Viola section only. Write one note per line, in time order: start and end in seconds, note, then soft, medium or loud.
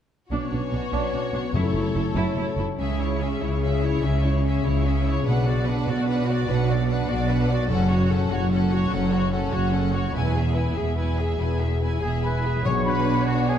0.31 0.50 D4 soft
0.51 0.59 D4 soft
0.72 0.80 D4 soft
0.92 1.11 D4 soft
1.12 1.20 D4 soft
1.33 1.41 D4 soft
1.54 1.74 E4 soft
1.75 1.83 E4 soft
1.95 2.03 E4 soft
2.15 2.36 E4 medium
2.37 2.45 E4 medium
2.58 2.66 E4 soft
2.78 2.98 C#4 soft
2.99 3.21 E4 soft
3.21 3.42 C#4 soft
3.41 3.62 E4 soft
3.60 3.81 C#4 soft
3.82 4.03 E4 soft
4.03 4.24 C#4 soft
4.23 4.44 E4 soft
4.43 4.63 C#4 soft
4.64 4.85 E4 soft
4.84 5.05 C#4 soft
5.04 5.26 E4 soft
5.25 5.45 D4 soft
5.46 5.67 F#4 soft
5.68 5.88 D4 soft
5.88 6.08 F#4 medium
6.08 6.27 D4 soft
6.27 6.48 F#4 soft
6.49 6.69 D4 soft
6.68 6.89 F#4 soft
6.88 7.08 D4 soft
7.09 7.29 F#4 soft
7.30 7.50 D4 medium
7.50 7.70 F#4 soft
7.70 7.89 C#4 medium
7.90 8.11 F#4 soft
8.10 8.31 C#4 medium
8.30 8.51 F#4 medium
8.52 8.70 C#4 soft
8.72 8.92 F#4 soft
8.92 9.12 C#4 soft
9.11 9.32 F#4 soft
9.33 9.51 C#4 soft
9.52 9.73 F#4 soft
9.72 9.93 C#4 soft
9.93 10.14 F#4 soft
10.12 10.32 E4 soft
10.33 10.55 G#4 soft
10.55 10.76 E4 soft
10.77 10.98 G#4 soft
10.98 11.17 E4 soft
11.19 11.40 G#4 soft
11.40 11.61 E4 soft
11.60 11.81 G#4 soft
11.81 12.01 E4 soft
12.01 12.23 G#4 soft
12.24 12.45 E4 soft
12.45 12.66 G#4 soft
12.66 13.58 D4 soft
12.66 13.58 C#5 soft